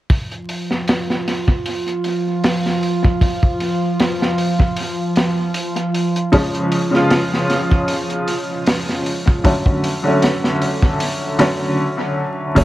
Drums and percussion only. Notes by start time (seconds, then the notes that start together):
0.10 kick, open hi-hat
0.31 closed hi-hat
0.49 open hi-hat
0.71 snare
0.88 snare, open hi-hat
1.10 snare
1.28 snare, open hi-hat
1.48 kick
1.66 open hi-hat
1.88 closed hi-hat
2.04 open hi-hat
2.44 snare, open hi-hat
2.66 snare
2.83 open hi-hat
3.05 kick
3.21 kick, open hi-hat
3.43 kick
3.60 open hi-hat
4.00 snare, open hi-hat
4.22 snare
4.38 open hi-hat
4.60 kick
4.77 open hi-hat
5.16 snare, open hi-hat
5.54 open hi-hat
5.76 closed hi-hat
5.94 open hi-hat
6.16 closed hi-hat
6.33 kick, open hi-hat
6.55 closed hi-hat
6.72 open hi-hat
6.94 snare
7.10 snare, open hi-hat
7.34 snare
7.50 snare, open hi-hat
7.71 kick
7.88 open hi-hat
8.10 closed hi-hat
8.28 open hi-hat
8.66 snare, open hi-hat
8.89 snare
9.06 open hi-hat
9.27 kick
9.45 kick, open hi-hat
9.66 kick
9.84 open hi-hat
10.22 snare, open hi-hat
10.44 snare
10.62 open hi-hat
10.82 kick
11.00 open hi-hat
11.39 snare, open hi-hat
12.56 kick, open hi-hat